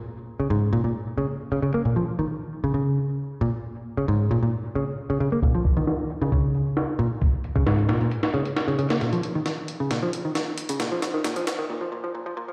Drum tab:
HH |----------------|----------------|----------------|xxx-x-x-x-x-x-x-|
SD |----------------|----------------|----------------|---oo--o----o---|
BD |----------------|----------------|----------------|o-o-----o-------|

HH |x-x-xxxxxxxxxxxx|xxx-x-x-x-x-x-xx|x-x-xxx---------|
SD |----o-o--o--o--o|o---o---o---o---|o-o-o-o---------|
BD |o--o------------|----------------|----------------|